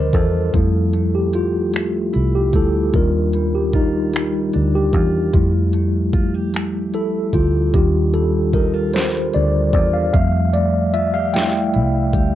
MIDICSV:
0, 0, Header, 1, 5, 480
1, 0, Start_track
1, 0, Key_signature, -1, "major"
1, 0, Tempo, 800000
1, 323, Time_signature, 6, 3, 24, 8
1, 7410, End_track
2, 0, Start_track
2, 0, Title_t, "Tine electric piano"
2, 0, Program_c, 0, 4
2, 0, Control_c, 0, 64, 127
2, 0, Note_on_c, 0, 53, 47
2, 0, Note_on_c, 0, 55, 42
2, 0, Note_on_c, 0, 62, 56
2, 0, Note_on_c, 0, 70, 73
2, 0, Note_on_c, 0, 72, 88
2, 0, Note_on_c, 0, 75, 87
2, 85, Note_on_c, 0, 69, 82
2, 88, Note_off_c, 0, 70, 0
2, 323, Note_off_c, 0, 55, 0
2, 323, Note_on_c, 0, 55, 47
2, 328, Note_on_c, 0, 57, 48
2, 331, Note_on_c, 0, 64, 53
2, 332, Control_c, 0, 64, 0
2, 333, Note_off_c, 0, 62, 0
2, 334, Note_off_c, 0, 75, 0
2, 335, Note_off_c, 0, 53, 0
2, 335, Note_off_c, 0, 72, 0
2, 418, Control_c, 0, 64, 127
2, 689, Note_on_c, 0, 67, 73
2, 702, Note_off_c, 0, 69, 0
2, 810, Note_off_c, 0, 67, 0
2, 811, Note_on_c, 0, 65, 78
2, 1019, Note_off_c, 0, 55, 0
2, 1022, Note_off_c, 0, 57, 0
2, 1023, Note_off_c, 0, 64, 0
2, 1383, Note_off_c, 0, 65, 0
2, 1411, Note_on_c, 0, 67, 72
2, 1528, Note_on_c, 0, 55, 44
2, 1531, Note_off_c, 0, 67, 0
2, 1532, Note_on_c, 0, 57, 40
2, 1533, Note_on_c, 0, 64, 50
2, 1533, Note_on_c, 0, 69, 82
2, 1639, Note_off_c, 0, 69, 0
2, 1742, Note_off_c, 0, 55, 0
2, 1744, Note_off_c, 0, 57, 0
2, 1745, Note_off_c, 0, 64, 0
2, 1767, Note_on_c, 0, 55, 52
2, 1772, Control_c, 0, 64, 0
2, 1772, Note_on_c, 0, 62, 46
2, 1773, Note_on_c, 0, 70, 81
2, 1774, Note_on_c, 0, 65, 58
2, 1871, Control_c, 0, 64, 127
2, 2129, Note_on_c, 0, 67, 68
2, 2139, Note_off_c, 0, 70, 0
2, 2238, Note_off_c, 0, 67, 0
2, 2252, Note_on_c, 0, 63, 79
2, 2852, Note_on_c, 0, 67, 75
2, 2865, Note_off_c, 0, 63, 0
2, 3181, Note_off_c, 0, 55, 0
2, 3183, Note_off_c, 0, 62, 0
2, 3185, Note_off_c, 0, 65, 0
2, 3204, Note_on_c, 0, 55, 49
2, 3207, Note_on_c, 0, 57, 46
2, 3211, Control_c, 0, 64, 0
2, 3211, Note_on_c, 0, 64, 56
2, 3303, Note_off_c, 0, 67, 0
2, 3325, Control_c, 0, 64, 127
2, 4167, Note_on_c, 0, 69, 75
2, 4389, Note_off_c, 0, 69, 0
2, 4405, Note_on_c, 0, 65, 76
2, 4619, Note_off_c, 0, 55, 0
2, 4621, Note_off_c, 0, 57, 0
2, 4623, Note_off_c, 0, 64, 0
2, 4646, Note_off_c, 0, 65, 0
2, 4647, Note_on_c, 0, 55, 48
2, 4647, Note_on_c, 0, 67, 78
2, 4649, Note_on_c, 0, 62, 42
2, 4651, Control_c, 0, 64, 0
2, 4654, Note_on_c, 0, 65, 58
2, 4769, Control_c, 0, 64, 127
2, 4882, Note_on_c, 0, 69, 76
2, 4892, Note_off_c, 0, 67, 0
2, 4964, Note_off_c, 0, 55, 0
2, 4965, Note_off_c, 0, 62, 0
2, 4968, Note_off_c, 0, 65, 0
2, 5123, Note_on_c, 0, 70, 75
2, 5130, Note_off_c, 0, 69, 0
2, 5366, Note_on_c, 0, 72, 76
2, 5371, Note_off_c, 0, 70, 0
2, 5588, Note_off_c, 0, 72, 0
2, 5607, Note_on_c, 0, 74, 85
2, 5828, Note_off_c, 0, 74, 0
2, 5841, Note_on_c, 0, 74, 84
2, 5961, Note_on_c, 0, 77, 81
2, 5966, Note_off_c, 0, 74, 0
2, 6073, Note_off_c, 0, 77, 0
2, 6080, Note_on_c, 0, 77, 93
2, 6082, Note_on_c, 0, 55, 48
2, 6088, Note_on_c, 0, 57, 50
2, 6092, Control_c, 0, 64, 0
2, 6092, Note_on_c, 0, 76, 59
2, 6213, Control_c, 0, 64, 127
2, 6320, Note_on_c, 0, 74, 87
2, 6329, Note_off_c, 0, 77, 0
2, 6402, Note_off_c, 0, 55, 0
2, 6405, Note_off_c, 0, 57, 0
2, 6407, Note_off_c, 0, 76, 0
2, 6545, Note_off_c, 0, 74, 0
2, 6562, Note_on_c, 0, 76, 98
2, 6682, Note_on_c, 0, 77, 88
2, 6686, Note_off_c, 0, 76, 0
2, 6802, Note_on_c, 0, 79, 87
2, 6804, Note_on_c, 0, 55, 50
2, 6806, Note_off_c, 0, 77, 0
2, 6806, Note_on_c, 0, 57, 40
2, 6809, Note_on_c, 0, 64, 47
2, 7020, Note_off_c, 0, 55, 0
2, 7021, Note_off_c, 0, 57, 0
2, 7023, Note_off_c, 0, 64, 0
2, 7410, Note_off_c, 0, 79, 0
2, 7410, End_track
3, 0, Start_track
3, 0, Title_t, "Clean electric guitar"
3, 0, Program_c, 1, 27
3, 0, Note_on_c, 1, 51, 72
3, 0, Note_on_c, 1, 55, 60
3, 0, Note_on_c, 1, 62, 49
3, 0, Note_on_c, 1, 65, 54
3, 81, Note_off_c, 1, 65, 0
3, 84, Note_on_c, 1, 65, 57
3, 318, Note_off_c, 1, 51, 0
3, 320, Note_on_c, 1, 53, 73
3, 371, Note_off_c, 1, 62, 0
3, 560, Note_off_c, 1, 55, 0
3, 562, Note_on_c, 1, 57, 53
3, 797, Note_off_c, 1, 65, 0
3, 799, Note_on_c, 1, 67, 56
3, 1033, Note_off_c, 1, 57, 0
3, 1040, Note_on_c, 1, 57, 60
3, 1279, Note_on_c, 1, 64, 59
3, 1520, Note_off_c, 1, 67, 0
3, 1522, Note_on_c, 1, 67, 56
3, 1759, Note_off_c, 1, 53, 0
3, 1762, Note_on_c, 1, 51, 74
3, 1809, Note_off_c, 1, 64, 0
3, 1810, Note_off_c, 1, 57, 0
3, 2006, Note_on_c, 1, 55, 52
3, 2239, Note_off_c, 1, 67, 0
3, 2241, Note_on_c, 1, 65, 65
3, 2478, Note_off_c, 1, 55, 0
3, 2480, Note_on_c, 1, 55, 68
3, 2722, Note_on_c, 1, 62, 55
3, 2960, Note_off_c, 1, 65, 0
3, 2962, Note_on_c, 1, 65, 61
3, 3196, Note_off_c, 1, 51, 0
3, 3199, Note_on_c, 1, 53, 73
3, 3250, Note_off_c, 1, 62, 0
3, 3442, Note_off_c, 1, 55, 0
3, 3444, Note_on_c, 1, 57, 54
3, 3682, Note_off_c, 1, 65, 0
3, 3684, Note_on_c, 1, 65, 57
3, 3806, Note_off_c, 1, 65, 0
3, 3806, Note_on_c, 1, 67, 55
3, 3918, Note_off_c, 1, 57, 0
3, 3925, Note_on_c, 1, 57, 62
3, 4166, Note_on_c, 1, 64, 54
3, 4397, Note_off_c, 1, 67, 0
3, 4404, Note_on_c, 1, 67, 57
3, 4640, Note_off_c, 1, 53, 0
3, 4643, Note_on_c, 1, 51, 75
3, 4692, Note_off_c, 1, 57, 0
3, 4692, Note_off_c, 1, 64, 0
3, 4888, Note_on_c, 1, 55, 51
3, 5122, Note_off_c, 1, 67, 0
3, 5125, Note_on_c, 1, 63, 60
3, 5242, Note_off_c, 1, 63, 0
3, 5242, Note_on_c, 1, 65, 54
3, 5359, Note_off_c, 1, 55, 0
3, 5361, Note_on_c, 1, 55, 65
3, 5603, Note_on_c, 1, 62, 58
3, 5840, Note_off_c, 1, 65, 0
3, 5847, Note_on_c, 1, 65, 56
3, 6082, Note_off_c, 1, 51, 0
3, 6085, Note_on_c, 1, 53, 79
3, 6131, Note_off_c, 1, 62, 0
3, 6322, Note_off_c, 1, 55, 0
3, 6324, Note_on_c, 1, 57, 53
3, 6560, Note_off_c, 1, 65, 0
3, 6562, Note_on_c, 1, 65, 61
3, 6682, Note_off_c, 1, 65, 0
3, 6682, Note_on_c, 1, 67, 53
3, 6793, Note_off_c, 1, 57, 0
3, 6801, Note_on_c, 1, 57, 70
3, 7041, Note_on_c, 1, 64, 58
3, 7275, Note_off_c, 1, 67, 0
3, 7283, Note_on_c, 1, 67, 63
3, 7410, Note_off_c, 1, 53, 0
3, 7410, Note_off_c, 1, 57, 0
3, 7410, Note_off_c, 1, 64, 0
3, 7410, Note_off_c, 1, 67, 0
3, 7410, End_track
4, 0, Start_track
4, 0, Title_t, "Fingered electric bass"
4, 0, Program_c, 2, 33
4, 0, Note_on_c, 2, 38, 69
4, 85, Note_off_c, 2, 38, 0
4, 85, Note_on_c, 2, 40, 89
4, 300, Note_off_c, 2, 40, 0
4, 330, Note_on_c, 2, 41, 85
4, 1263, Note_off_c, 2, 41, 0
4, 1295, Note_on_c, 2, 36, 81
4, 1525, Note_off_c, 2, 36, 0
4, 1525, Note_on_c, 2, 38, 82
4, 1740, Note_off_c, 2, 38, 0
4, 1769, Note_on_c, 2, 39, 92
4, 2702, Note_off_c, 2, 39, 0
4, 2734, Note_on_c, 2, 38, 67
4, 2964, Note_off_c, 2, 38, 0
4, 2964, Note_on_c, 2, 40, 91
4, 3180, Note_off_c, 2, 40, 0
4, 3208, Note_on_c, 2, 41, 89
4, 4175, Note_off_c, 2, 41, 0
4, 4175, Note_on_c, 2, 36, 72
4, 4386, Note_off_c, 2, 36, 0
4, 4405, Note_on_c, 2, 38, 86
4, 4620, Note_off_c, 2, 38, 0
4, 4649, Note_on_c, 2, 39, 85
4, 5582, Note_off_c, 2, 39, 0
4, 5615, Note_on_c, 2, 38, 80
4, 5846, Note_off_c, 2, 38, 0
4, 5846, Note_on_c, 2, 40, 78
4, 6061, Note_off_c, 2, 40, 0
4, 6088, Note_on_c, 2, 41, 89
4, 7055, Note_on_c, 2, 36, 76
4, 7064, Note_off_c, 2, 41, 0
4, 7286, Note_off_c, 2, 36, 0
4, 7286, Note_on_c, 2, 38, 96
4, 7410, Note_off_c, 2, 38, 0
4, 7410, End_track
5, 0, Start_track
5, 0, Title_t, "Drums"
5, 79, Note_on_c, 9, 36, 80
5, 84, Note_on_c, 9, 42, 46
5, 139, Note_off_c, 9, 36, 0
5, 144, Note_off_c, 9, 42, 0
5, 323, Note_on_c, 9, 36, 100
5, 325, Note_on_c, 9, 42, 76
5, 383, Note_off_c, 9, 36, 0
5, 385, Note_off_c, 9, 42, 0
5, 561, Note_on_c, 9, 42, 49
5, 621, Note_off_c, 9, 42, 0
5, 801, Note_on_c, 9, 42, 51
5, 861, Note_off_c, 9, 42, 0
5, 1042, Note_on_c, 9, 42, 82
5, 1057, Note_on_c, 9, 26, 96
5, 1102, Note_off_c, 9, 42, 0
5, 1117, Note_off_c, 9, 26, 0
5, 1282, Note_on_c, 9, 42, 44
5, 1342, Note_off_c, 9, 42, 0
5, 1519, Note_on_c, 9, 36, 78
5, 1523, Note_on_c, 9, 42, 51
5, 1579, Note_off_c, 9, 36, 0
5, 1583, Note_off_c, 9, 42, 0
5, 1762, Note_on_c, 9, 42, 73
5, 1763, Note_on_c, 9, 36, 99
5, 1822, Note_off_c, 9, 42, 0
5, 1823, Note_off_c, 9, 36, 0
5, 2000, Note_on_c, 9, 42, 50
5, 2060, Note_off_c, 9, 42, 0
5, 2240, Note_on_c, 9, 36, 85
5, 2240, Note_on_c, 9, 42, 53
5, 2300, Note_off_c, 9, 36, 0
5, 2300, Note_off_c, 9, 42, 0
5, 2481, Note_on_c, 9, 42, 77
5, 2496, Note_on_c, 9, 26, 99
5, 2541, Note_off_c, 9, 42, 0
5, 2556, Note_off_c, 9, 26, 0
5, 2721, Note_on_c, 9, 42, 44
5, 2781, Note_off_c, 9, 42, 0
5, 2959, Note_on_c, 9, 36, 82
5, 2963, Note_on_c, 9, 42, 48
5, 3019, Note_off_c, 9, 36, 0
5, 3023, Note_off_c, 9, 42, 0
5, 3201, Note_on_c, 9, 42, 80
5, 3202, Note_on_c, 9, 36, 102
5, 3261, Note_off_c, 9, 42, 0
5, 3262, Note_off_c, 9, 36, 0
5, 3439, Note_on_c, 9, 42, 49
5, 3499, Note_off_c, 9, 42, 0
5, 3680, Note_on_c, 9, 36, 90
5, 3681, Note_on_c, 9, 42, 53
5, 3740, Note_off_c, 9, 36, 0
5, 3741, Note_off_c, 9, 42, 0
5, 3924, Note_on_c, 9, 42, 77
5, 3938, Note_on_c, 9, 26, 98
5, 3984, Note_off_c, 9, 42, 0
5, 3998, Note_off_c, 9, 26, 0
5, 4162, Note_on_c, 9, 42, 46
5, 4222, Note_off_c, 9, 42, 0
5, 4399, Note_on_c, 9, 36, 75
5, 4403, Note_on_c, 9, 42, 51
5, 4459, Note_off_c, 9, 36, 0
5, 4463, Note_off_c, 9, 42, 0
5, 4643, Note_on_c, 9, 36, 101
5, 4644, Note_on_c, 9, 42, 72
5, 4703, Note_off_c, 9, 36, 0
5, 4704, Note_off_c, 9, 42, 0
5, 4882, Note_on_c, 9, 42, 50
5, 4942, Note_off_c, 9, 42, 0
5, 5120, Note_on_c, 9, 36, 77
5, 5121, Note_on_c, 9, 42, 54
5, 5180, Note_off_c, 9, 36, 0
5, 5181, Note_off_c, 9, 42, 0
5, 5361, Note_on_c, 9, 42, 78
5, 5376, Note_on_c, 9, 38, 103
5, 5421, Note_off_c, 9, 42, 0
5, 5436, Note_off_c, 9, 38, 0
5, 5601, Note_on_c, 9, 42, 44
5, 5661, Note_off_c, 9, 42, 0
5, 5839, Note_on_c, 9, 36, 86
5, 5844, Note_on_c, 9, 42, 54
5, 5899, Note_off_c, 9, 36, 0
5, 5904, Note_off_c, 9, 42, 0
5, 6083, Note_on_c, 9, 36, 100
5, 6083, Note_on_c, 9, 42, 76
5, 6143, Note_off_c, 9, 36, 0
5, 6143, Note_off_c, 9, 42, 0
5, 6322, Note_on_c, 9, 42, 47
5, 6382, Note_off_c, 9, 42, 0
5, 6563, Note_on_c, 9, 42, 51
5, 6623, Note_off_c, 9, 42, 0
5, 6803, Note_on_c, 9, 42, 80
5, 6818, Note_on_c, 9, 38, 109
5, 6863, Note_off_c, 9, 42, 0
5, 6878, Note_off_c, 9, 38, 0
5, 7043, Note_on_c, 9, 42, 48
5, 7103, Note_off_c, 9, 42, 0
5, 7280, Note_on_c, 9, 36, 88
5, 7287, Note_on_c, 9, 42, 53
5, 7340, Note_off_c, 9, 36, 0
5, 7347, Note_off_c, 9, 42, 0
5, 7410, End_track
0, 0, End_of_file